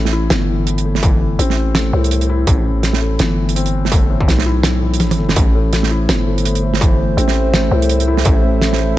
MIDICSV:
0, 0, Header, 1, 5, 480
1, 0, Start_track
1, 0, Key_signature, 0, "minor"
1, 0, Tempo, 361446
1, 1367, Time_signature, 4, 2, 24, 8
1, 11932, End_track
2, 0, Start_track
2, 0, Title_t, "Analog synth pad"
2, 0, Program_c, 0, 89
2, 7124, Note_on_c, 0, 57, 94
2, 7272, Note_on_c, 0, 72, 81
2, 7342, Note_on_c, 0, 69, 100
2, 7390, Note_on_c, 0, 76, 102
2, 11932, Note_off_c, 0, 57, 0
2, 11932, Note_off_c, 0, 69, 0
2, 11932, Note_off_c, 0, 72, 0
2, 11932, Note_off_c, 0, 76, 0
2, 11932, End_track
3, 0, Start_track
3, 0, Title_t, "Felt piano"
3, 0, Program_c, 1, 0
3, 0, Control_c, 1, 64, 127
3, 0, Note_on_c, 1, 45, 100
3, 0, Note_on_c, 1, 57, 83
3, 0, Note_on_c, 1, 64, 103
3, 169, Note_off_c, 1, 64, 0
3, 169, Note_on_c, 1, 64, 107
3, 398, Note_off_c, 1, 64, 0
3, 647, Note_on_c, 1, 52, 77
3, 877, Note_off_c, 1, 52, 0
3, 1130, Note_off_c, 1, 57, 0
3, 1130, Note_on_c, 1, 57, 77
3, 1349, Note_off_c, 1, 57, 0
3, 1365, Note_on_c, 1, 52, 103
3, 1826, Note_off_c, 1, 52, 0
3, 1847, Note_on_c, 1, 60, 105
3, 2003, Note_off_c, 1, 60, 0
3, 2329, Note_on_c, 1, 57, 87
3, 2483, Note_off_c, 1, 57, 0
3, 2570, Note_off_c, 1, 45, 0
3, 2570, Note_on_c, 1, 45, 102
3, 2799, Note_off_c, 1, 45, 0
3, 3047, Note_on_c, 1, 64, 103
3, 3278, Note_off_c, 1, 64, 0
3, 3523, Note_on_c, 1, 52, 80
3, 3755, Note_off_c, 1, 52, 0
3, 4005, Note_on_c, 1, 57, 80
3, 4226, Note_off_c, 1, 57, 0
3, 4244, Note_on_c, 1, 52, 108
3, 4706, Note_off_c, 1, 52, 0
3, 4722, Note_on_c, 1, 60, 109
3, 4880, Note_off_c, 1, 60, 0
3, 5201, Note_on_c, 1, 57, 83
3, 5360, Note_off_c, 1, 57, 0
3, 5441, Note_on_c, 1, 45, 102
3, 5674, Note_off_c, 1, 45, 0
3, 5925, Note_on_c, 1, 64, 109
3, 6156, Note_off_c, 1, 64, 0
3, 6406, Note_on_c, 1, 52, 80
3, 6637, Note_off_c, 1, 52, 0
3, 6887, Note_on_c, 1, 57, 78
3, 7108, Note_off_c, 1, 57, 0
3, 7129, Note_on_c, 1, 57, 84
3, 7284, Note_off_c, 1, 57, 0
3, 7370, Note_on_c, 1, 45, 100
3, 7599, Note_off_c, 1, 45, 0
3, 7849, Note_on_c, 1, 64, 103
3, 8078, Note_off_c, 1, 64, 0
3, 8329, Note_on_c, 1, 57, 76
3, 8789, Note_off_c, 1, 57, 0
3, 8809, Note_on_c, 1, 57, 80
3, 9028, Note_off_c, 1, 57, 0
3, 9051, Note_on_c, 1, 52, 106
3, 9510, Note_off_c, 1, 52, 0
3, 9528, Note_on_c, 1, 60, 106
3, 9683, Note_off_c, 1, 60, 0
3, 10009, Note_on_c, 1, 57, 90
3, 10163, Note_off_c, 1, 57, 0
3, 10248, Note_on_c, 1, 45, 108
3, 10478, Note_off_c, 1, 45, 0
3, 10727, Note_on_c, 1, 64, 103
3, 10957, Note_off_c, 1, 64, 0
3, 11206, Note_on_c, 1, 57, 80
3, 11667, Note_off_c, 1, 57, 0
3, 11687, Note_on_c, 1, 57, 84
3, 11907, Note_off_c, 1, 57, 0
3, 11932, End_track
4, 0, Start_track
4, 0, Title_t, "808-style bass"
4, 0, Program_c, 2, 38
4, 0, Note_on_c, 2, 33, 100
4, 390, Note_off_c, 2, 33, 0
4, 406, Note_on_c, 2, 31, 95
4, 1831, Note_off_c, 2, 31, 0
4, 1847, Note_on_c, 2, 33, 98
4, 2551, Note_off_c, 2, 33, 0
4, 2568, Note_on_c, 2, 36, 99
4, 3272, Note_off_c, 2, 36, 0
4, 3285, Note_on_c, 2, 33, 99
4, 4230, Note_off_c, 2, 33, 0
4, 4245, Note_on_c, 2, 31, 99
4, 5670, Note_off_c, 2, 31, 0
4, 5684, Note_on_c, 2, 35, 101
4, 7110, Note_off_c, 2, 35, 0
4, 7125, Note_on_c, 2, 33, 98
4, 8071, Note_off_c, 2, 33, 0
4, 8089, Note_on_c, 2, 31, 97
4, 9512, Note_off_c, 2, 31, 0
4, 9527, Note_on_c, 2, 33, 98
4, 10231, Note_off_c, 2, 33, 0
4, 10245, Note_on_c, 2, 36, 103
4, 10950, Note_off_c, 2, 36, 0
4, 10963, Note_on_c, 2, 33, 101
4, 11909, Note_off_c, 2, 33, 0
4, 11932, End_track
5, 0, Start_track
5, 0, Title_t, "Drums"
5, 72, Note_on_c, 9, 40, 50
5, 204, Note_off_c, 9, 40, 0
5, 402, Note_on_c, 9, 38, 127
5, 407, Note_on_c, 9, 42, 96
5, 535, Note_off_c, 9, 38, 0
5, 540, Note_off_c, 9, 42, 0
5, 887, Note_on_c, 9, 42, 72
5, 1019, Note_off_c, 9, 42, 0
5, 1037, Note_on_c, 9, 42, 55
5, 1169, Note_off_c, 9, 42, 0
5, 1263, Note_on_c, 9, 40, 57
5, 1364, Note_on_c, 9, 42, 83
5, 1365, Note_on_c, 9, 36, 115
5, 1395, Note_off_c, 9, 40, 0
5, 1497, Note_off_c, 9, 42, 0
5, 1498, Note_off_c, 9, 36, 0
5, 1850, Note_on_c, 9, 42, 74
5, 1983, Note_off_c, 9, 42, 0
5, 1993, Note_on_c, 9, 40, 49
5, 2126, Note_off_c, 9, 40, 0
5, 2321, Note_on_c, 9, 38, 109
5, 2329, Note_on_c, 9, 42, 86
5, 2454, Note_off_c, 9, 38, 0
5, 2462, Note_off_c, 9, 42, 0
5, 2713, Note_on_c, 9, 42, 49
5, 2805, Note_off_c, 9, 42, 0
5, 2805, Note_on_c, 9, 42, 76
5, 2938, Note_off_c, 9, 42, 0
5, 2938, Note_on_c, 9, 42, 51
5, 3071, Note_off_c, 9, 42, 0
5, 3282, Note_on_c, 9, 42, 88
5, 3285, Note_on_c, 9, 36, 114
5, 3415, Note_off_c, 9, 42, 0
5, 3417, Note_off_c, 9, 36, 0
5, 3761, Note_on_c, 9, 38, 53
5, 3763, Note_on_c, 9, 42, 69
5, 3894, Note_off_c, 9, 38, 0
5, 3895, Note_off_c, 9, 42, 0
5, 3897, Note_on_c, 9, 40, 52
5, 4030, Note_off_c, 9, 40, 0
5, 4238, Note_on_c, 9, 42, 81
5, 4249, Note_on_c, 9, 38, 110
5, 4371, Note_off_c, 9, 42, 0
5, 4381, Note_off_c, 9, 38, 0
5, 4633, Note_on_c, 9, 42, 55
5, 4731, Note_off_c, 9, 42, 0
5, 4731, Note_on_c, 9, 42, 69
5, 4857, Note_off_c, 9, 42, 0
5, 4857, Note_on_c, 9, 42, 54
5, 4990, Note_off_c, 9, 42, 0
5, 5114, Note_on_c, 9, 40, 53
5, 5202, Note_on_c, 9, 36, 115
5, 5203, Note_on_c, 9, 42, 95
5, 5247, Note_off_c, 9, 40, 0
5, 5335, Note_off_c, 9, 36, 0
5, 5336, Note_off_c, 9, 42, 0
5, 5585, Note_on_c, 9, 36, 62
5, 5691, Note_on_c, 9, 38, 61
5, 5691, Note_on_c, 9, 42, 82
5, 5718, Note_off_c, 9, 36, 0
5, 5824, Note_off_c, 9, 38, 0
5, 5824, Note_off_c, 9, 42, 0
5, 5824, Note_on_c, 9, 40, 57
5, 5957, Note_off_c, 9, 40, 0
5, 6154, Note_on_c, 9, 38, 116
5, 6163, Note_on_c, 9, 42, 93
5, 6287, Note_off_c, 9, 38, 0
5, 6296, Note_off_c, 9, 42, 0
5, 6555, Note_on_c, 9, 42, 57
5, 6638, Note_off_c, 9, 42, 0
5, 6638, Note_on_c, 9, 42, 76
5, 6641, Note_on_c, 9, 48, 66
5, 6771, Note_off_c, 9, 42, 0
5, 6774, Note_off_c, 9, 48, 0
5, 6788, Note_on_c, 9, 48, 66
5, 6789, Note_on_c, 9, 42, 58
5, 6921, Note_off_c, 9, 48, 0
5, 6922, Note_off_c, 9, 42, 0
5, 7022, Note_on_c, 9, 40, 57
5, 7029, Note_on_c, 9, 38, 77
5, 7121, Note_on_c, 9, 42, 101
5, 7125, Note_on_c, 9, 36, 125
5, 7155, Note_off_c, 9, 40, 0
5, 7162, Note_off_c, 9, 38, 0
5, 7254, Note_off_c, 9, 42, 0
5, 7258, Note_off_c, 9, 36, 0
5, 7605, Note_on_c, 9, 42, 81
5, 7611, Note_on_c, 9, 38, 58
5, 7738, Note_off_c, 9, 42, 0
5, 7744, Note_off_c, 9, 38, 0
5, 7744, Note_on_c, 9, 40, 52
5, 7877, Note_off_c, 9, 40, 0
5, 8087, Note_on_c, 9, 38, 126
5, 8088, Note_on_c, 9, 42, 91
5, 8220, Note_off_c, 9, 38, 0
5, 8221, Note_off_c, 9, 42, 0
5, 8473, Note_on_c, 9, 42, 53
5, 8572, Note_off_c, 9, 42, 0
5, 8572, Note_on_c, 9, 42, 83
5, 8704, Note_off_c, 9, 42, 0
5, 8704, Note_on_c, 9, 42, 55
5, 8836, Note_off_c, 9, 42, 0
5, 8946, Note_on_c, 9, 40, 61
5, 9046, Note_on_c, 9, 36, 127
5, 9055, Note_on_c, 9, 42, 92
5, 9079, Note_off_c, 9, 40, 0
5, 9179, Note_off_c, 9, 36, 0
5, 9187, Note_off_c, 9, 42, 0
5, 9534, Note_on_c, 9, 42, 75
5, 9664, Note_on_c, 9, 40, 55
5, 9667, Note_off_c, 9, 42, 0
5, 9797, Note_off_c, 9, 40, 0
5, 10008, Note_on_c, 9, 38, 125
5, 10009, Note_on_c, 9, 42, 89
5, 10141, Note_off_c, 9, 38, 0
5, 10142, Note_off_c, 9, 42, 0
5, 10389, Note_on_c, 9, 42, 57
5, 10484, Note_off_c, 9, 42, 0
5, 10484, Note_on_c, 9, 42, 77
5, 10617, Note_off_c, 9, 42, 0
5, 10625, Note_on_c, 9, 42, 53
5, 10758, Note_off_c, 9, 42, 0
5, 10856, Note_on_c, 9, 40, 58
5, 10957, Note_on_c, 9, 42, 92
5, 10965, Note_on_c, 9, 36, 127
5, 10989, Note_off_c, 9, 40, 0
5, 11089, Note_off_c, 9, 42, 0
5, 11098, Note_off_c, 9, 36, 0
5, 11441, Note_on_c, 9, 38, 67
5, 11449, Note_on_c, 9, 42, 82
5, 11574, Note_off_c, 9, 38, 0
5, 11582, Note_off_c, 9, 42, 0
5, 11591, Note_on_c, 9, 40, 55
5, 11724, Note_off_c, 9, 40, 0
5, 11932, End_track
0, 0, End_of_file